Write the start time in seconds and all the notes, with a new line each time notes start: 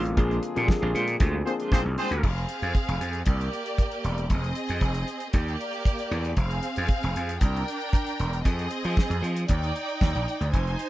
Already playing: A1 D3 F3 G#3 A#3 C4 D4 F4 G#4
0.05 muted clean electric guitar stroke, closed hi-hat
0.16 A#1 F3 G#3 A#3 C4 D4 F4 G#4 C5, kick, closed hi-hat
0.31 closed hi-hat
0.42 muted clean electric guitar stroke, closed hi-hat
0.55 A#2 F3 G#3 A#3 C4 D4 F4 G4 C5, closed hi-hat
0.63 G#4
0.68 muted clean electric guitar stroke, kick, snare
0.82 A#1 G#3 D4 F4 C5
0.94 A#2 G#3 D4 F4 C5, closed hi-hat
1.08 closed hi-hat
1.20 D2 G#3 D4 F4 C5, kick, closed hi-hat
1.36 muted clean electric guitar stroke
1.45 F3 A#3 C4 D4 F4 G#4 C5, muted clean electric guitar stroke, closed hi-hat
1.60 G#3 D4 F4 C5, closed hi-hat
1.72 A#1 C4 F4 G#4 C5, muted clean electric guitar stroke, kick, snare
1.85 C2, muted clean electric guitar stroke
1.97 G#3 C4 D4 F4 G#4 C5, open hi-hat
2.11 D2, muted clean electric guitar stroke, closed hi-hat
2.23 F1 C4 G#4 F5, kick, crash
2.38 closed hi-hat
2.49 closed hi-hat
2.62 F2, closed hi-hat
2.75 kick, closed hi-hat
2.88 F1, closed hi-hat
3.00 F2, closed hi-hat
3.13 closed hi-hat
3.26 C2 A#3 G4 D5, kick, closed hi-hat
3.41 closed hi-hat
3.53 closed hi-hat
3.66 closed hi-hat
3.78 kick, closed hi-hat
3.92 closed hi-hat
4.04 E1, closed hi-hat
4.18 closed hi-hat
4.30 F1 C4 G#4 D#5, kick, closed hi-hat
4.44 closed hi-hat
4.55 closed hi-hat
4.69 F2, closed hi-hat
4.81 F1, kick, closed hi-hat
4.94 closed hi-hat
5.08 closed hi-hat
5.20 closed hi-hat
5.33 D#2 A#3 G4 D5, kick, closed hi-hat
5.48 closed hi-hat
5.61 closed hi-hat
5.73 closed hi-hat
5.85 kick, closed hi-hat
5.99 closed hi-hat
6.11 E2, closed hi-hat
6.25 closed hi-hat
6.37 F1 C4 G#4 F5, kick, closed hi-hat
6.51 closed hi-hat
6.63 closed hi-hat
6.76 F2, closed hi-hat
6.88 kick, closed hi-hat
7.03 F1, closed hi-hat
7.16 F2, closed hi-hat
7.29 closed hi-hat
7.41 C2 D4 A#4 G5, kick, closed hi-hat
7.56 closed hi-hat
7.68 closed hi-hat
7.81 closed hi-hat
7.93 kick, closed hi-hat
8.07 closed hi-hat
8.20 E1, closed hi-hat
8.33 closed hi-hat
8.44 F2 C4 G#4 D#5, kick, closed hi-hat
8.59 closed hi-hat
8.71 closed hi-hat
8.84 F3, closed hi-hat
8.97 kick, snare
9.10 F2, closed hi-hat
9.22 F3, closed hi-hat
9.36 closed hi-hat
9.48 D#2 D#4 D5 G5, kick, closed hi-hat
9.64 closed hi-hat
9.76 closed hi-hat
9.88 closed hi-hat
10.01 D#2, kick, snare
10.15 A#1, closed hi-hat
10.28 closed hi-hat
10.41 D2, closed hi-hat
10.52 F1 D#4 C5 G#5, kick, closed hi-hat
10.67 closed hi-hat
10.79 closed hi-hat